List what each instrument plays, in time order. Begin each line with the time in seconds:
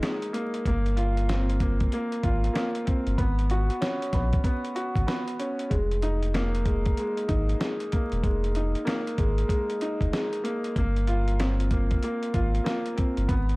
Already playing: upright piano G#3 A#3 D#4
0.02 upright piano G#3, snare, closed hi-hat
0.22 closed hi-hat
0.33 upright piano A#3, closed hi-hat
0.54 closed hi-hat
0.66 sub bass G1, upright piano A#3, kick, closed hi-hat
0.86 closed hi-hat
0.96 upright piano F4, closed hi-hat
1.17 closed hi-hat
1.29 upright piano C4, snare, closed hi-hat
1.50 closed hi-hat
1.60 upright piano A#3, kick, closed hi-hat
1.80 kick, closed hi-hat
1.92 upright piano A#3, closed hi-hat
2.12 closed hi-hat
2.23 sub bass G#1, upright piano F4, kick, closed hi-hat
2.44 closed hi-hat
2.54 upright piano A#3, snare, closed hi-hat
2.75 closed hi-hat
2.85 upright piano C4, kick, closed hi-hat
3.07 sub bass G1, closed hi-hat
3.18 sub bass G#1, upright piano B3, kick, closed hi-hat
3.39 closed hi-hat
3.50 upright piano F#4, closed hi-hat
3.70 closed hi-hat
3.81 upright piano C#4, snare, closed hi-hat
4.02 closed hi-hat
4.13 sub bass A#1, upright piano B3, kick, snare, closed hi-hat
4.33 kick, closed hi-hat
4.44 upright piano B3, kick, closed hi-hat
4.65 closed hi-hat
4.75 upright piano F#4, closed hi-hat
4.96 sub bass G#1, kick, closed hi-hat
5.07 upright piano B3, snare, closed hi-hat
5.28 closed hi-hat
5.39 upright piano C#4, closed hi-hat
5.59 closed hi-hat
5.70 sub bass F1, upright piano G#3, kick, closed hi-hat
5.91 closed hi-hat
6.02 upright piano D#4, closed hi-hat
6.23 closed hi-hat
6.34 upright piano A#3, snare, closed hi-hat
6.55 closed hi-hat
6.65 upright piano G#3, kick, closed hi-hat
6.86 kick, closed hi-hat
6.97 upright piano G#3, closed hi-hat
7.17 closed hi-hat
7.28 sub bass G#1, upright piano D#4, kick, closed hi-hat
7.49 closed hi-hat
7.60 upright piano G#3, snare, closed hi-hat
7.80 closed hi-hat
7.92 upright piano A#3, kick, closed hi-hat
8.12 sub bass E1, closed hi-hat
8.23 sub bass F1, upright piano G#3, kick, closed hi-hat
8.44 closed hi-hat
8.55 upright piano D#4, closed hi-hat
8.75 closed hi-hat
8.85 upright piano A#3, snare, closed hi-hat
9.07 closed hi-hat
9.18 sub bass G#1, upright piano G#3, kick, closed hi-hat
9.38 closed hi-hat
9.48 upright piano G#3, kick, closed hi-hat
9.70 closed hi-hat
9.81 upright piano D#4, closed hi-hat
10.01 sub bass F1, kick, closed hi-hat
10.12 upright piano G#3, snare, closed hi-hat
10.33 closed hi-hat
10.44 upright piano A#3, closed hi-hat
10.64 closed hi-hat
10.76 sub bass G1, upright piano A#3, kick, closed hi-hat
10.96 closed hi-hat
11.07 upright piano F4, closed hi-hat
11.28 closed hi-hat
11.39 upright piano C4, snare, closed hi-hat
11.60 closed hi-hat
11.71 upright piano A#3, kick, closed hi-hat
11.91 kick, closed hi-hat
12.03 upright piano A#3, closed hi-hat
12.23 closed hi-hat
12.34 sub bass G#1, upright piano F4, kick, closed hi-hat
12.55 closed hi-hat
12.64 upright piano A#3, snare, closed hi-hat
12.86 closed hi-hat
12.96 upright piano C4, kick, closed hi-hat
13.17 sub bass G1, closed hi-hat
13.29 sub bass G#1, upright piano B3, kick, closed hi-hat
13.49 closed hi-hat